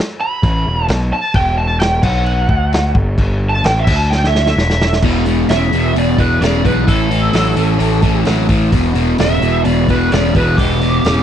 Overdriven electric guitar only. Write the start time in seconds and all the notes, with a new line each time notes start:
5.04 E2 B2
5.27 E2 B2
5.50 E2 C#3
5.73 E2 B2
5.95 E2 B2
6.19 E2 B2
6.42 E2 C#3
6.63 E2 B2
6.87 A2 E3
7.10 A2 E3
7.34 A2 F#3
7.56 A2 E3
7.78 A2 E3
8.03 A2 E3
8.25 A2 F#3
8.49 A2 E3
8.72 E2 B2
8.94 E2 B2
9.19 E2 C#3
9.42 E2 B2
9.65 E2 B2
9.89 E2 B2
10.12 E2 C#3
10.36 E2 B2
10.60 E2 B2
10.82 E2 B2
11.05 E2 C#3